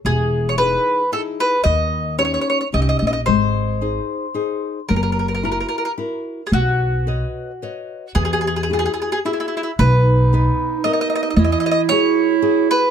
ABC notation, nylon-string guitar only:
X:1
M:3/4
L:1/8
Q:1/4=111
K:E
V:1 name="Nylon-string guitar"
E,2 [DEG]2 [DEG]2 | D,2 [CD=G]2 [CDG]2 | G,2 [DG^B]2 [DGB]2 | F,2 [EF^A]2 [EFA]2 |
B,2 [Bcd]2 [Bcd]2 | E,2 [EFG]2 [EFG]2 | [K:B] B,,2 [B,DB]2 [B,DA]2 | E,2 [EFG]2 [EFG]2 |]